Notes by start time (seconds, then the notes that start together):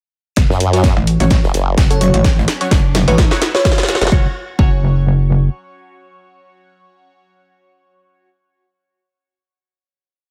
0.36 F#1, kick, snare, closed hi-hat, riser
0.50 F#2, snare
0.60 closed hi-hat, open hi-hat
0.73 F#3 C#4 F#4 C#5, snare, closed hi-hat
0.83 kick, snare, closed hi-hat
0.97 A1
1.07 closed hi-hat, open hi-hat
1.20 A1 F#3 C#4 F#4 C#5, snare, closed hi-hat
1.30 kick, snare, closed hi-hat
1.43 F#1, snare
1.54 F#1, snare, closed hi-hat, open hi-hat
1.78 F#1, kick, snare, closed hi-hat
1.91 F#3 C#4 F#4 A4 C#5, closed hi-hat
2.01 F#3 C#4 F#4 C#5, closed hi-hat, open hi-hat
2.14 A1 C#5, closed hi-hat
2.24 kick, snare, closed hi-hat
2.38 snare
2.48 snare, closed hi-hat, open hi-hat
2.61 F#3 C#4 F#4 C#5, snare, closed hi-hat
2.71 F#1, kick, snare, closed hi-hat
2.95 snare, closed hi-hat, open hi-hat
3.08 A1 F#3 C#4 F#4 B4 C#5, snare, closed hi-hat
3.18 kick, snare, closed hi-hat
3.31 F#3 C#4 F#4 C#5, snare
3.42 snare, closed hi-hat, open hi-hat
3.54 C#5, snare
3.64 kick, snare, closed hi-hat
3.72 snare
3.78 snare, closed hi-hat
3.83 snare
3.88 F#3 C#4 F#4 C#5, snare, closed hi-hat, open hi-hat
3.95 snare
4.01 F#1, snare, closed hi-hat
4.07 snare
4.12 F#1 F#3 C#4 F#4 C#5, kick
4.59 F#1 F#3 C#4 F#4 C#5, kick